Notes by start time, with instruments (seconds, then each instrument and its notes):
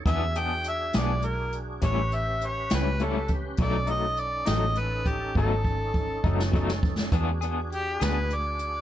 0.06 fingered electric bass E2, clean electric guitar E3 B3 D4 G#4, tonewheel organ D4 F#4 G#4, harmonica E5, kick, closed hi-hat
0.35 clean electric guitar B3 D4 G#4, harmonica G5, closed hi-hat
0.64 closed hi-hat
0.68 harmonica E5
0.93 fingered electric bass B1, clean electric guitar D4 G#4, snare, closed hi-hat
0.97 clean electric guitar B3, harmonica D5
1.22 harmonica A#4, closed hi-hat
1.52 closed hi-hat
1.81 fingered electric bass A1, clean electric guitar A2 G3 C#4 E4, tonewheel organ C#4 G4 B4, harmonica C#5, kick, snare, closed hi-hat
2.12 harmonica E5, closed hi-hat
2.41 closed hi-hat
2.46 harmonica C#5
2.70 fingered electric bass C#2, clean electric guitar G3 C#4 E4, snare, closed hi-hat
2.74 harmonica B4
2.99 clean electric guitar A2 G3 C#4 E4, closed hi-hat
3.04 harmonica A4
3.28 kick, closed hi-hat
3.57 fingered electric bass B1, clean electric guitar B2 F#3, tonewheel organ C#4, kick, closed hi-hat
3.61 clean electric guitar A3 D#4, tonewheel organ D#4 A4, harmonica D5
3.87 clean electric guitar F#3 A3 D#4, harmonica D#5, closed hi-hat
4.17 harmonica D5, closed hi-hat
4.46 fingered electric bass A1, clean electric guitar F#3 A3 D#4, harmonica D#5, snare, closed hi-hat
4.75 harmonica B4, closed hi-hat
5.06 harmonica G4, kick, closed hi-hat
5.35 fingered electric bass G#1, clean electric guitar B2 F#3 A3 D#4, harmonica A4, kick
5.65 kick
5.94 kick
6.24 fingered electric bass F#1, clean electric guitar F#3 A3 D#4, kick
6.40 snare
6.52 clean electric guitar B2 F#3 A3 D#4, kick
6.70 snare
6.83 kick
6.99 snare
7.12 fingered electric bass E2, clean electric guitar E3 B3 D4 G#4, tonewheel organ D4 F#4 G#4, kick, closed hi-hat
7.41 clean electric guitar B3 D4 G#4, closed hi-hat
7.72 harmonica G4, closed hi-hat
8.00 fingered electric bass D2, clean electric guitar B3 D4 G#4, harmonica B4, snare, closed hi-hat
8.30 closed hi-hat
8.34 harmonica D5
8.59 closed hi-hat